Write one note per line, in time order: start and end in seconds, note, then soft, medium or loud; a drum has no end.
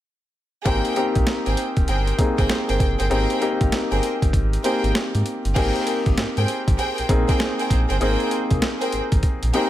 0.65 0.81 G#1 loud
0.65 0.91 A#3 medium
0.65 0.92 C4 medium
0.65 0.92 D#4 medium
0.65 0.92 G4 medium
0.65 0.94 G#4 medium
0.65 0.95 A#4 medium
0.65 0.95 C5 medium
0.65 0.95 G5 loud
0.65 kick loud
0.65 closed hi-hat medium
0.85 closed hi-hat soft
0.96 1.93 A#3 medium
0.96 1.94 C4 medium
0.96 1.94 D#4 medium
0.96 1.94 G4 medium
0.96 closed hi-hat medium
1.15 1.25 A#1 medium
1.15 kick medium
1.15 closed hi-hat soft
1.27 snare loud
1.27 closed hi-hat medium
1.46 1.55 G#1 medium
1.46 1.59 G#4 medium
1.46 1.59 A#4 medium
1.46 1.59 C5 medium
1.46 1.59 G5 medium
1.46 closed hi-hat soft
1.57 closed hi-hat medium
1.77 1.86 D#1 medium
1.77 kick medium
1.77 closed hi-hat soft
1.88 2.12 G1 medium
1.88 2.08 G#4 medium
1.88 2.08 A#4 medium
1.88 2.09 C5 medium
1.88 2.09 G5 medium
1.88 closed hi-hat medium
2.07 closed hi-hat medium
2.18 2.93 A#3 medium
2.18 2.94 C4 medium
2.18 2.94 D#4 medium
2.18 2.94 G#4 medium
2.18 kick loud
2.18 closed hi-hat medium
2.38 2.47 G#1 medium
2.38 2.51 G#4 medium
2.38 2.51 A#4 medium
2.38 2.51 C5 medium
2.38 2.51 G5 medium
2.38 kick loud
2.38 closed hi-hat medium
2.49 snare loud
2.49 closed hi-hat medium
2.68 2.78 G1 medium
2.68 2.81 G#4 medium
2.68 2.81 A#4 medium
2.68 2.81 C5 medium
2.68 2.82 G5 medium
2.68 closed hi-hat soft
2.80 2.95 F#1 medium
2.80 kick loud
2.80 closed hi-hat medium
2.99 3.09 G1 medium
2.99 3.09 G#4 medium
2.99 3.09 A#4 medium
2.99 3.09 C5 medium
2.99 3.10 G5 medium
2.99 closed hi-hat medium
3.10 3.26 G#1 loud
3.10 3.36 A#3 medium
3.10 3.36 C4 medium
3.10 3.36 D#4 medium
3.10 3.37 G4 medium
3.10 3.39 G#4 medium
3.10 3.39 A#4 medium
3.10 3.39 C5 medium
3.10 3.40 G5 medium
3.10 closed hi-hat medium
3.30 closed hi-hat soft
3.41 4.38 A#3 medium
3.41 4.38 C4 medium
3.41 4.39 D#4 medium
3.41 4.39 G4 medium
3.41 closed hi-hat medium
3.61 3.70 G#1 medium
3.61 kick medium
3.61 closed hi-hat soft
3.72 snare loud
3.72 closed hi-hat medium
3.91 4.00 G1 medium
3.91 4.04 G#4 medium
3.91 4.04 A#4 medium
3.91 4.04 C5 medium
3.91 4.04 G5 medium
3.91 closed hi-hat soft
4.03 closed hi-hat medium
4.22 4.31 G1 medium
4.22 kick medium
4.22 closed hi-hat soft
4.33 4.57 G#1 loud
4.33 kick medium
4.33 closed hi-hat medium
4.53 closed hi-hat medium
4.64 5.39 A#3 medium
4.64 5.39 C4 medium
4.64 5.39 D#4 medium
4.64 5.39 G4 medium
4.64 4.84 G#4 medium
4.64 4.84 A#4 medium
4.64 4.84 C5 medium
4.64 4.84 G5 medium
4.64 closed hi-hat medium
4.84 4.92 G#1 medium
4.84 closed hi-hat medium
4.95 snare loud
4.95 closed hi-hat medium
5.15 5.23 G#2 loud
5.15 closed hi-hat soft
5.26 closed hi-hat medium
5.45 5.54 G1 medium
5.45 closed hi-hat soft
5.55 5.71 G#1 loud
5.55 6.53 A#3 medium
5.55 6.53 C4 medium
5.55 6.53 D#4 medium
5.55 6.53 G4 loud
5.55 5.84 G#4 medium
5.55 5.85 A#4 medium
5.55 5.85 C5 medium
5.55 5.85 G5 medium
5.55 kick loud
5.55 closed hi-hat medium
5.55 crash medium
5.76 closed hi-hat soft
5.87 closed hi-hat medium
6.06 6.15 G#1 medium
6.06 kick loud
6.06 closed hi-hat soft
6.18 6.25 G#2 soft
6.18 snare loud
6.18 closed hi-hat medium
6.36 6.46 G#2 medium
6.36 6.49 G#4 medium
6.36 6.49 A#4 medium
6.36 6.49 C5 medium
6.36 6.49 G5 medium
6.36 closed hi-hat soft
6.48 closed hi-hat medium
6.68 6.76 G#1 medium
6.68 kick medium
6.68 closed hi-hat soft
6.78 6.98 G#4 medium
6.78 6.98 A#4 medium
6.78 6.99 C5 medium
6.78 6.99 G5 medium
6.78 closed hi-hat medium
6.98 7.03 A#1 soft
6.98 closed hi-hat medium
7.09 7.24 A#1 medium
7.09 7.84 A#3 medium
7.09 7.84 C4 medium
7.09 7.84 D#4 medium
7.09 7.84 G#4 medium
7.09 kick medium
7.09 closed hi-hat medium
7.28 7.41 G#4 medium
7.28 7.41 A#4 medium
7.28 7.41 C5 medium
7.28 7.41 G5 medium
7.28 kick medium
7.28 closed hi-hat medium
7.40 snare loud
7.40 closed hi-hat medium
7.59 7.71 G#4 medium
7.59 7.72 A#4 medium
7.59 7.72 C5 medium
7.59 7.72 G5 medium
7.59 closed hi-hat medium
7.70 7.85 A#1 medium
7.70 kick medium
7.70 closed hi-hat medium
7.89 7.99 G1 medium
7.89 7.99 G#4 medium
7.89 7.99 A#4 medium
7.89 7.99 C5 medium
7.89 8.00 G5 medium
7.89 closed hi-hat medium
8.00 8.16 G#1 loud
8.00 8.98 A#3 medium
8.00 8.98 C4 medium
8.00 8.98 D#4 medium
8.00 8.29 G#4 medium
8.00 8.98 G#4 medium
8.00 8.29 A#4 medium
8.00 8.29 C5 medium
8.00 8.30 G5 loud
8.00 closed hi-hat medium
8.20 closed hi-hat soft
8.31 closed hi-hat medium
8.51 8.60 C2 medium
8.51 kick loud
8.51 closed hi-hat soft
8.62 snare loud
8.62 closed hi-hat medium
8.81 8.94 G#4 medium
8.81 8.94 A#4 medium
8.81 8.94 C5 medium
8.81 8.94 G5 medium
8.81 closed hi-hat soft
8.92 9.01 G#1 soft
8.92 closed hi-hat medium
9.12 9.21 G#1 medium
9.12 kick loud
9.12 closed hi-hat medium
9.23 kick medium
9.23 closed hi-hat medium
9.43 9.51 A#1 medium
9.43 closed hi-hat medium
9.53 9.70 A#3 medium
9.53 9.70 C4 medium
9.53 9.70 D#4 medium
9.53 9.70 G4 medium
9.53 9.70 G#4 medium
9.53 9.70 A#4 medium
9.53 9.70 C5 medium
9.53 9.70 G5 medium
9.53 closed hi-hat medium